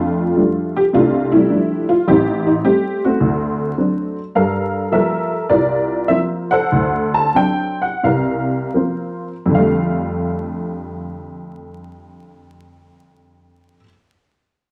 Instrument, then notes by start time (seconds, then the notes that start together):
honky-tonk piano
Already playing: F2 A3 D4 F4
0.36 F3 G3 A3 D4
0.76 G4
0.93 C2 C3 A3 D4 F4
1.32 G3 A3 E4
1.49 F3 G3 A3 D4
1.89 F4
2.08 A1 C4 D#4 G4
2.47 D#4
2.64 G3 A3 C4 G4
3.05 A3 C4 F#4
3.20 D2
3.78 F#3 C4 D4
4.35 G2 A4 A#4 F5
4.92 F3 G3 A#3 A4 A#4 E5
5.50 C2 F4 A#4 D5
6.08 F3 A#3 C4 E5
6.51 A4 C5 F#5
6.72 D2
7.14 A5
7.34 F#3 C4 D4 G5
7.82 F#5
8.03 C2 C3 A#4 F5
8.74 F3 A#3 C4
9.46 F2
9.50 D3
9.54 G3 A3 F5